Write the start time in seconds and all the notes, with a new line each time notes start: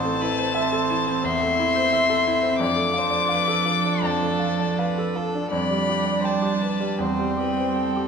Already playing: A1 E3 C4 C5 A5
0.04 A3
0.21 E4 B4
0.38 C5
0.55 C5 E5
0.72 A4
0.90 E4
1.07 C4
1.24 E2 E5 C6
1.41 A3
1.59 E4
1.76 C5
1.93 E5
2.10 A4
2.27 E4
2.43 C4
2.59 F2 F3 D4 D5 D6
2.76 A3
2.93 F4
2.98 C5
3.10 D5
3.29 B4 F5
3.47 A4
3.65 F4 A4
3.85 D4
4.02 F2 A5
4.22 A3
4.39 F4
4.59 D5
4.79 B4 F5
4.98 A4
5.16 F4 A4
5.35 D4
5.51 F2 G3 D4 D5 B5
5.70 G3
5.89 G4
6.06 D5
6.20 C5 G5
6.25 A5
6.42 G4
6.61 D4 B4
6.80 G3
6.99 E2 G3 C4 C5 G5
7.19 G3
7.37 G4 B4
7.58 C5
7.76 A4 G5
7.96 G4